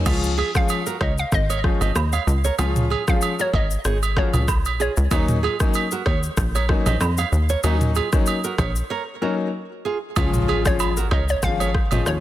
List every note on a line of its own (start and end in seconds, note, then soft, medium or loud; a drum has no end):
0.06 0.43 C#2 loud
0.06 0.30 F3 medium
0.06 0.30 G#3 medium
0.06 0.30 C#4 medium
0.06 0.18 C#4 medium
0.06 0.18 F4 loud
0.06 0.31 F4 loud
0.06 kick loud
0.06 crash loud
0.06 high agogo medium
0.06 shaker medium
0.23 shaker medium
0.38 0.50 F4 medium
0.38 0.49 G#4 medium
0.38 high agogo medium
0.54 0.77 F3 medium
0.54 0.78 G#3 medium
0.54 0.78 C#4 medium
0.54 0.78 F4 medium
0.54 0.68 F5 medium
0.54 kick loud
0.54 cross-stick medium
0.54 shaker medium
0.69 high agogo medium
0.69 shaker medium
0.86 0.96 F#4 medium
0.86 0.96 A#4 medium
0.86 shaker medium
1.01 1.25 C#2 loud
1.01 1.13 A#4 medium
1.01 1.12 C#5 medium
1.01 1.16 D#5 medium
1.01 kick medium
1.01 cross-stick medium
1.01 high agogo medium
1.18 1.31 F5 medium
1.18 shaker soft
1.32 1.69 G#1 loud
1.32 1.79 D#5 medium
1.32 kick medium
1.32 cross-stick medium
1.32 shaker medium
1.50 1.60 A#4 medium
1.50 1.59 C#5 medium
1.50 high agogo medium
1.50 shaker medium
1.64 1.88 F3 medium
1.64 1.88 G#3 medium
1.64 1.88 C#4 medium
1.64 1.88 F4 medium
1.64 kick medium
1.64 cross-stick medium
1.81 1.92 G#1 medium
1.81 1.91 C5 medium
1.81 1.91 D#5 medium
1.81 high agogo medium
1.81 shaker medium
1.96 2.19 D#2 loud
1.96 cross-stick medium
1.96 low woodblock medium
1.96 shaker medium
2.13 2.23 C#5 medium
2.13 2.22 F5 medium
2.13 high agogo medium
2.13 shaker medium
2.27 2.51 C#2 loud
2.27 shaker soft
2.45 2.55 A#4 medium
2.45 2.54 C#5 medium
2.45 shaker medium
2.59 2.96 C#2 loud
2.59 2.83 F3 medium
2.59 2.83 G#3 medium
2.59 2.83 C#4 medium
2.59 2.71 C#4 medium
2.59 2.70 F4 loud
2.59 2.83 F4 loud
2.59 high agogo medium
2.59 shaker medium
2.76 mid tom medium
2.76 shaker medium
2.90 3.02 F4 medium
2.90 3.02 G#4 medium
2.90 high agogo medium
3.07 3.30 F3 medium
3.07 3.30 G#3 medium
3.07 3.30 C#4 medium
3.07 3.30 F4 medium
3.07 3.21 F5 medium
3.07 kick medium
3.07 cross-stick medium
3.07 shaker medium
3.22 high agogo medium
3.22 shaker medium
3.39 3.49 F#4 medium
3.39 3.49 A#4 medium
3.39 3.52 C#5 medium
3.39 shaker medium
3.53 3.77 G#1 loud
3.53 3.66 A#4 medium
3.53 3.65 C#5 medium
3.53 3.69 D#5 medium
3.53 kick medium
3.53 high agogo medium
3.71 shaker medium
3.85 4.22 G#1 loud
3.85 3.97 G#4 medium
3.85 3.97 C#5 medium
3.85 cross-stick loud
3.85 shaker medium
4.03 high agogo medium
4.03 shaker medium
4.16 4.41 F3 medium
4.16 4.41 G#3 medium
4.16 4.41 C#4 medium
4.16 4.41 F4 medium
4.16 4.29 F#4 medium
4.16 4.28 A#4 medium
4.16 4.32 C#5 medium
4.16 kick loud
4.16 cross-stick medium
4.33 4.67 C#2 medium
4.33 mid tom medium
4.33 high agogo medium
4.33 shaker medium
4.48 kick loud
4.48 cross-stick medium
4.48 low woodblock medium
4.48 shaker medium
4.65 4.89 A#1 medium
4.65 high agogo medium
4.65 shaker medium
4.80 4.92 F4 medium
4.80 4.91 G#4 medium
4.80 4.95 C#5 medium
4.80 shaker soft
4.97 5.08 C#2 medium
4.97 shaker medium
5.11 5.48 D#2 loud
5.11 5.35 F#3 loud
5.11 5.36 A#3 medium
5.11 5.36 C#4 medium
5.11 5.36 D#4 loud
5.11 5.23 D#4 medium
5.11 5.23 F#4 loud
5.11 kick loud
5.11 high agogo medium
5.11 shaker medium
5.29 mid tom medium
5.29 shaker soft
5.43 5.55 F4 medium
5.43 5.55 G#4 medium
5.43 high agogo medium
5.60 5.83 F#3 medium
5.60 5.83 A#3 medium
5.60 5.83 C#4 medium
5.60 5.83 D#4 medium
5.60 kick loud
5.60 cross-stick medium
5.60 shaker medium
5.74 high agogo medium
5.74 shaker medium
5.91 6.02 F#4 medium
5.91 6.01 A#4 medium
5.91 shaker medium
6.06 6.30 D#2 medium
6.06 6.18 A#4 medium
6.06 6.18 C#5 medium
6.06 kick medium
6.06 cross-stick medium
6.06 high agogo medium
6.23 shaker medium
6.37 6.74 A#1 loud
6.37 kick medium
6.37 cross-stick medium
6.37 shaker medium
6.55 6.65 A#4 medium
6.55 6.64 C#5 medium
6.55 high agogo medium
6.55 shaker medium
6.69 6.93 F#3 medium
6.69 6.93 A#3 medium
6.69 6.94 C#4 medium
6.69 6.94 D#4 medium
6.69 kick medium
6.69 cross-stick medium
6.86 6.97 A#1 medium
6.86 6.97 C5 medium
6.86 6.96 D#5 medium
6.86 mid tom loud
6.86 high agogo medium
6.86 shaker medium
7.01 7.25 F2 loud
7.01 cross-stick medium
7.01 low woodblock medium
7.01 shaker medium
7.18 7.28 C#5 medium
7.18 7.28 F5 medium
7.18 high agogo medium
7.18 shaker medium
7.32 7.56 D#2 medium
7.32 shaker soft
7.49 7.60 A#4 medium
7.49 7.59 C#5 medium
7.49 shaker medium
7.64 8.01 D#2 loud
7.64 7.88 F#3 medium
7.64 7.88 A#3 medium
7.64 7.88 C#4 medium
7.64 7.88 D#4 loud
7.64 7.76 D#4 medium
7.64 7.75 F#4 loud
7.64 high agogo medium
7.64 shaker medium
7.81 mid tom medium
7.81 shaker medium
7.95 8.08 F4 medium
7.95 8.07 G#4 medium
7.95 high agogo medium
7.95 shaker soft
8.12 8.35 F#3 medium
8.12 8.36 A#3 medium
8.12 8.36 C#4 medium
8.12 8.36 D#4 medium
8.12 kick loud
8.12 cross-stick medium
8.12 shaker medium
8.26 high agogo medium
8.26 shaker medium
8.44 8.54 F#4 medium
8.44 8.54 A#4 medium
8.44 shaker medium
8.58 8.82 A#1 loud
8.58 8.71 A#4 medium
8.58 8.70 C#5 medium
8.58 kick medium
8.58 cross-stick medium
8.58 high agogo medium
8.58 shaker medium
8.76 shaker medium
8.90 9.02 A#4 medium
8.90 9.02 C#5 medium
9.21 9.46 F#3 medium
9.21 9.46 A#3 medium
9.21 9.46 C#4 medium
9.21 9.46 D#4 medium
9.21 9.34 F#4 medium
9.21 9.33 A#4 medium
9.85 9.97 F4 medium
9.85 9.97 G#4 medium
10.16 10.53 C#2 loud
10.16 10.61 F3 medium
10.16 10.61 G#3 medium
10.16 10.61 C#4 medium
10.16 10.29 C#4 medium
10.16 10.28 F4 loud
10.16 10.61 F4 loud
10.16 kick loud
10.16 impact medium
10.16 high agogo medium
10.16 shaker medium
10.34 mid tom medium
10.34 shaker medium
10.48 10.60 F4 medium
10.48 10.60 G#4 medium
10.48 high agogo medium
10.65 10.88 F3 medium
10.65 10.88 G#3 medium
10.65 10.88 C#4 medium
10.65 10.88 F4 medium
10.65 10.78 C#5 medium
10.65 kick loud
10.65 cross-stick medium
10.65 shaker medium
10.79 high agogo medium
10.79 low woodblock medium
10.79 shaker medium
10.97 11.07 F#4 medium
10.97 11.07 A#4 medium
10.97 shaker medium
11.11 11.35 C#2 loud
11.11 11.23 A#4 medium
11.11 11.23 C#5 medium
11.11 11.27 D#5 medium
11.11 kick medium
11.11 cross-stick medium
11.11 high agogo medium
11.29 11.42 C#5 medium
11.29 shaker medium
11.42 11.80 G#1 medium
11.42 11.67 F3 medium
11.42 11.67 G#3 medium
11.42 11.67 C#4 medium
11.42 11.67 F4 loud
11.42 11.89 F5 loud
11.42 kick medium
11.42 cross-stick medium
11.42 shaker medium
11.60 11.70 A#4 medium
11.60 11.70 C#5 medium
11.60 high agogo medium
11.60 shaker medium
11.74 kick medium
11.74 cross-stick medium
11.91 12.03 G#1 medium
11.91 12.14 F3 medium
11.91 12.14 G#3 medium
11.91 12.15 C#4 medium
11.91 12.15 F4 medium
11.91 12.02 C5 medium
11.91 12.01 D#5 medium
11.91 mid tom loud
11.91 high agogo medium
11.91 shaker medium
12.06 12.20 D#2 loud
12.06 12.20 C#5 medium
12.06 cross-stick medium
12.06 shaker medium